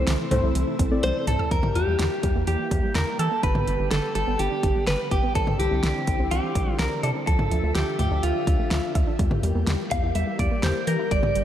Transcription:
Already playing: string machine C3 E3 A3 E4, synth keys C4 E4 A4 C5, clean electric guitar C5
0.07 analog synth bass C2, synth arpeggio sound E3, snare, closed hi-hat
0.19 synth arpeggio sound E3
0.31 analog synth bass C2, synth arpeggio sound A3, synth keys C4 E4 A4 C5, closed hi-hat, mid tom, cowbell
0.43 analog synth bass C2, synth arpeggio sound E3
0.55 analog synth bass C2, synth arpeggio sound E3, closed hi-hat
0.67 synth arpeggio sound E3
0.79 analog synth bass C2, synth arpeggio sound C4, kick, closed hi-hat
0.91 synth arpeggio sound A3, synth keys C4 E4 A4 D5
1.03 analog synth bass C2, synth arpeggio sound E3, clean electric guitar C5, closed hi-hat, high tom
1.27 analog synth bass C2, clean electric guitar A4, synth arpeggio sound A5, closed hi-hat, mid tom
1.39 synth arpeggio sound E6, floor tom
1.51 analog synth bass E2, string machine E3 G3 A#3 G4, synth arpeggio sound E3, clean electric guitar A#4, kick, closed hi-hat
1.63 mid tom
1.75 analog synth bass E2, synth arpeggio sound E3, clean electric guitar G4, closed hi-hat
1.87 analog synth bass E2, synth arpeggio sound G3
1.99 analog synth bass E2, synth arpeggio sound E3, snare, closed hi-hat
2.23 analog synth bass E2, synth arpeggio sound G3, kick, closed hi-hat
2.35 analog synth bass E2, synth arpeggio sound A#3
2.47 analog synth bass E2, synth arpeggio sound E3, clean electric guitar G4, closed hi-hat
2.59 synth arpeggio sound E3
2.71 analog synth bass E2, synth arpeggio sound E3, kick, closed hi-hat
2.83 synth arpeggio sound G3
2.95 analog synth bass E2, synth arpeggio sound E3, clean electric guitar A#4, snare, closed hi-hat
3.19 analog synth bass E3, clean electric guitar A4, synth arpeggio sound E6, closed hi-hat
3.31 synth arpeggio sound A#3
3.43 analog synth bass G1, string machine D3 B3, synth arpeggio sound D3, clean electric guitar B4, kick, closed hi-hat
3.55 mid tom
3.67 analog synth bass G1, synth arpeggio sound D3, closed hi-hat
3.79 analog synth bass G1, synth arpeggio sound G3
3.91 analog synth bass G1, synth arpeggio sound D3, clean electric guitar A4, snare, closed hi-hat
4.15 analog synth bass G1, synth arpeggio sound G3, clean electric guitar A4, closed hi-hat
4.27 analog synth bass G1, synth arpeggio sound B3
4.39 analog synth bass G1, synth arpeggio sound D3, clean electric guitar G4, closed hi-hat
4.51 synth arpeggio sound D3
4.63 analog synth bass G1, synth arpeggio sound D3, kick, closed hi-hat
4.75 synth arpeggio sound G3
4.87 analog synth bass G1, synth arpeggio sound D3, clean electric guitar B4, snare, closed hi-hat
5.11 analog synth bass G1, clean electric guitar G4, synth arpeggio sound D6, kick, closed hi-hat
5.23 synth arpeggio sound B3
5.35 analog synth bass C2, synth arpeggio sound E3, string machine C4 E4, clean electric guitar A4, kick, closed hi-hat
5.47 mid tom
5.59 analog synth bass C2, synth arpeggio sound E3, clean electric guitar G4, closed hi-hat
5.71 analog synth bass C2, synth arpeggio sound G3
5.83 analog synth bass C2, synth arpeggio sound E3, snare, closed hi-hat
6.07 analog synth bass C2, synth arpeggio sound G3, kick, closed hi-hat
6.19 analog synth bass C2, synth arpeggio sound C4
6.31 analog synth bass C2, synth arpeggio sound E3, clean electric guitar G4, closed hi-hat
6.43 synth arpeggio sound E3
6.55 analog synth bass C2, synth arpeggio sound E3, kick, closed hi-hat
6.67 synth arpeggio sound G3
6.79 analog synth bass C2, synth arpeggio sound E3, clean electric guitar A#4, snare, closed hi-hat
7.03 analog synth bass C3, clean electric guitar A4, synth arpeggio sound D5, closed hi-hat
7.15 synth arpeggio sound C4
7.27 analog synth bass D2, synth arpeggio sound F3, string machine F3 A3 E5, clean electric guitar A4, kick, closed hi-hat
7.39 mid tom
7.51 analog synth bass D2, synth arpeggio sound F3, closed hi-hat
7.63 analog synth bass D2, synth arpeggio sound A3
7.75 analog synth bass D2, synth arpeggio sound F3, clean electric guitar G4, snare, closed hi-hat
7.99 analog synth bass D2, synth arpeggio sound A3, clean electric guitar G4, closed hi-hat, mid tom
8.11 analog synth bass D2, synth arpeggio sound D4
8.23 analog synth bass D2, synth arpeggio sound F3, clean electric guitar F4, closed hi-hat
8.35 synth arpeggio sound F3
8.47 analog synth bass D2, synth arpeggio sound F3, kick, closed hi-hat
8.59 synth arpeggio sound A3
8.71 analog synth bass D2, synth arpeggio sound F3, snare, closed hi-hat
8.95 analog synth bass D2, synth arpeggio sound E5, kick, closed hi-hat
9.07 synth arpeggio sound D4
9.19 analog synth bass E2, string machine E3 G3 A#3 G4, synth arpeggio sound G3, kick, closed hi-hat
9.31 mid tom
9.43 analog synth bass E2, synth arpeggio sound G3, closed hi-hat
9.55 analog synth bass E2, synth arpeggio sound A#3
9.67 analog synth bass E2, synth arpeggio sound G3, snare, closed hi-hat
9.91 analog synth bass E2, synth arpeggio sound A#3, clean electric guitar F5, kick, closed hi-hat
10.03 analog synth bass E2, synth arpeggio sound E4
10.15 analog synth bass E2, synth arpeggio sound G3, clean electric guitar E5, closed hi-hat
10.27 synth arpeggio sound G3
10.39 analog synth bass E2, synth arpeggio sound G3, clean electric guitar D5, kick, closed hi-hat
10.51 synth arpeggio sound A#3
10.63 analog synth bass E2, synth arpeggio sound G3, clean electric guitar C5, snare, closed hi-hat
10.87 analog synth bass E3, clean electric guitar A#4, synth arpeggio sound G6, closed hi-hat
10.99 synth arpeggio sound E4
11.11 analog synth bass G1, string machine D3 B3, synth arpeggio sound G3, clean electric guitar D5, kick, closed hi-hat
11.23 mid tom
11.35 analog synth bass G1, synth arpeggio sound G3, closed hi-hat

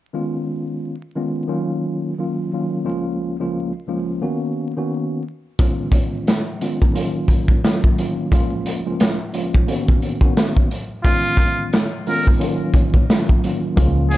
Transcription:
0.13 tine electric piano D#3 G#3 B3 C#4 F4
1.16 tine electric piano D#3 G#3 B3 C#4 F4
1.48 tine electric piano D#3 F#3 A#3 C#4 F4
2.18 tine electric piano D#3 F#3 A#3 C#4 F4
2.53 tine electric piano D#3 F#3 A#3 C#4 F4
2.84 tine electric piano C#2 F3 G#3 A#3 C#4 F4
3.40 tine electric piano C#2 F3 G#3 A#3 C#4 F4
3.88 tine electric piano C#2 F3 G#3 A#3 C#4 F4
4.21 tine electric piano D#3 A#3 B3 C#4 F#4
4.77 tine electric piano D#3 A#3 B3 C#4 F#4
5.59 tine electric piano D#3 G#3 B3 C#4 F4, kick, closed hi-hat
5.92 kick, closed hi-hat
6.27 snare, closed hi-hat
6.61 tine electric piano D#3 G#3 B3 C#4 F4, closed hi-hat
6.82 kick
6.93 tine electric piano D#3 F#3 A#3 C#4 F4, closed hi-hat
7.28 kick, closed hi-hat
7.48 kick
7.64 tine electric piano D#3 F#3 A#3 C#4 F4, snare, closed hi-hat
7.84 kick
7.98 tine electric piano D#3 F#3 A#3 C#4 F4, closed hi-hat
8.30 tine electric piano C#2 F3 G#3 A#3 C#4 F4, kick, closed hi-hat
8.66 closed hi-hat
8.85 tine electric piano C#2 F3 G#3 A#3 C#4 F4
9.00 snare, closed hi-hat
9.33 tine electric piano C#2 F3 G#3 A#3 C#4 F4, closed hi-hat
9.54 kick
9.67 tine electric piano D#3 A#3 B3 C#4 F#4, closed hi-hat
9.88 kick
10.02 closed hi-hat
10.21 tine electric piano D#3 A#3 B3 C#4 F#4, kick
10.37 snare, closed hi-hat
10.57 kick
10.71 closed hi-hat
11.04 tine electric piano D#3 G#3 B3 C#4 F4, muted trumpet F4, kick, closed hi-hat
11.37 kick, closed hi-hat
11.73 snare, closed hi-hat
12.07 tine electric piano D#3 G#3 B3 C#4 F4, muted trumpet A#4, open hi-hat
12.27 kick
12.39 tine electric piano D#3 F#3 A#3 C#4 F4, closed hi-hat
12.74 kick, closed hi-hat
12.94 kick
13.09 tine electric piano D#3 F#3 A#3 C#4 F4, snare, closed hi-hat
13.29 kick
13.44 tine electric piano D#3 F#3 A#3 C#4 F4, closed hi-hat
13.76 tine electric piano C#2 F3 G#3 A#3 C#4 F4, fingered electric bass C#2, kick, closed hi-hat
14.10 muted trumpet G#4, closed hi-hat

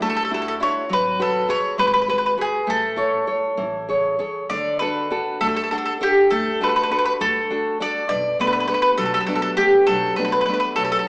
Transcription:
Already playing: nylon-string guitar D4 E4 F#4
0.00 upright bass D2, nylon-string guitar A3, mandolin A4
0.10 mandolin A4
0.16 mandolin A4
0.25 mandolin A4
0.31 nylon-string guitar D4 E4 F#4, mandolin A4
0.42 mandolin A4
0.48 mandolin A4
0.60 nylon-string guitar D4 E4 F#4, mandolin C#5
0.89 upright bass G#1, nylon-string guitar F#3, mandolin B4
1.20 nylon-string guitar F#4 B4, mandolin A4
1.49 nylon-string guitar F#4 G#4 B4, mandolin C#5
1.78 upright bass G#1, nylon-string guitar G#3, mandolin B4
1.87 mandolin B4
1.94 mandolin B4
2.02 mandolin B4
2.08 nylon-string guitar F#4 G#4 B4, mandolin B4
2.18 mandolin B4
2.26 mandolin B4
2.38 nylon-string guitar F#4 G#4 B4, mandolin G#4
2.67 upright bass A1, nylon-string guitar A3, mandolin A4
2.96 nylon-string guitar E4 A4 C#5
3.27 nylon-string guitar A4 C#5
3.57 upright bass A1, nylon-string guitar E3
3.89 nylon-string guitar G#4 A4 C#5
4.19 nylon-string guitar G#4 A4 C#5
4.50 upright bass D2, nylon-string guitar D3, mandolin D5
4.79 nylon-string guitar D4 F#4 A4, mandolin B4
5.10 nylon-string guitar D4 F#4 A4
5.41 upright bass D2, nylon-string guitar A3, mandolin A4
5.49 mandolin A4
5.56 mandolin A4
5.64 mandolin A4
5.71 nylon-string guitar D4 A4 F#5, mandolin A4
5.78 mandolin A4
5.86 mandolin A4
6.01 nylon-string guitar D4 A4, mandolin G4
6.30 upright bass D2, nylon-string guitar A3, mandolin A4
6.61 nylon-string guitar D4 F#4 A4, mandolin B4
6.69 mandolin B4
6.76 mandolin B4
6.83 mandolin B4
6.90 nylon-string guitar D4 F#4 A4, mandolin B4
6.99 mandolin B4
7.05 mandolin B4
7.20 upright bass D2, nylon-string guitar A3, mandolin A4
7.50 nylon-string guitar D4 F#4 A4
7.80 nylon-string guitar D4 F#4 A4, mandolin D5
8.09 upright bass B1, nylon-string guitar B2, mandolin D5
8.40 nylon-string guitar A3 B3 D4, mandolin B4
8.47 mandolin B4
8.53 mandolin B4
8.60 mandolin B4
8.68 nylon-string guitar A3 B3 D4, mandolin B4
8.74 mandolin B4
8.82 mandolin B4
8.98 upright bass B1, nylon-string guitar F#3, mandolin A4
9.06 mandolin A4
9.14 mandolin A4
9.21 mandolin A4
9.27 nylon-string guitar A3 B3 D4, mandolin A4
9.35 mandolin A4
9.42 mandolin A4
9.57 nylon-string guitar A3 B3 D4, mandolin G4
9.87 upright bass B1, nylon-string guitar F#3, mandolin A4
10.16 nylon-string guitar A3 B3 D4, mandolin B4
10.25 mandolin B4
10.32 mandolin B4
10.41 mandolin B4
10.46 nylon-string guitar A3 B3 D4, mandolin B4
10.53 mandolin B4
10.60 mandolin B4
10.76 upright bass B1, nylon-string guitar F#3, mandolin A4
10.84 mandolin A4
10.92 mandolin A4
10.99 mandolin A4

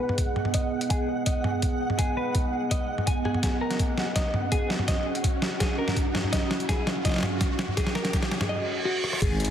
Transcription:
Already playing: ambient pad B3 G#4 D#5, synth texture F#5, riser
0.00 clean electric guitar B4
0.09 mid tom
0.18 kick, closed hi-hat
0.36 mid tom
0.45 mid tom
0.54 clean electric guitar D#5, kick, closed hi-hat
0.81 closed hi-hat
0.90 clean electric guitar G#4, kick, closed hi-hat
1.26 clean electric guitar D#5, kick, closed hi-hat
1.44 mid tom
1.62 kick, closed hi-hat
1.90 mid tom
1.99 clean electric guitar G#4, kick, closed hi-hat
2.17 clean electric guitar B4
2.35 kick, closed hi-hat
2.71 clean electric guitar D#5, kick, closed hi-hat
2.98 mid tom
3.07 clean electric guitar G#5, kick, closed hi-hat
3.25 clean electric guitar G#4, mid tom
3.34 mid tom
3.43 ambient pad C#4 F#4, clean electric guitar G#4, kick, snare, closed hi-hat
3.61 clean electric guitar A#4
3.71 snare, closed hi-hat
3.79 kick, closed hi-hat
3.98 snare
4.16 clean electric guitar D#5, kick, snare, closed hi-hat
4.34 mid tom
4.52 clean electric guitar G#4, kick, closed hi-hat
4.70 snare
4.79 mid tom
4.88 clean electric guitar D#5, kick, snare, closed hi-hat
5.15 closed hi-hat
5.24 kick, closed hi-hat
5.42 snare
5.60 clean electric guitar G#4, kick, snare, closed hi-hat
5.78 clean electric guitar A#4
5.88 snare, mid tom
5.97 kick, closed hi-hat
6.15 snare, mid tom
6.24 mid tom
6.33 clean electric guitar D#5, kick, snare, closed hi-hat
6.51 snare
6.60 closed hi-hat
6.69 clean electric guitar G#4, kick, snare, closed hi-hat
6.87 snare
7.05 clean electric guitar D#5, kick, snare, closed hi-hat
7.07 snare
7.09 snare
7.12 snare
7.14 snare
7.16 snare
7.18 snare
7.21 snare
7.23 snare, mid tom
7.41 kick, snare, closed hi-hat
7.59 snare
7.68 mid tom
7.77 clean electric guitar G#4, kick, snare, closed hi-hat
7.87 snare
7.95 clean electric guitar A#4, snare
8.05 snare, closed hi-hat
8.13 kick, snare, closed hi-hat
8.22 snare
8.31 snare
8.41 snare, mid tom
8.49 clean electric guitar D#5, reverse cymbal
8.85 clean electric guitar F#4
9.04 cross-stick
9.13 cross-stick
9.22 wobble bass G#1, ambient pad G#3 D#4 B4, clean electric guitar G#4, synth texture D#5, kick, closed hi-hat, crash, impact
9.40 closed hi-hat
9.45 closed hi-hat

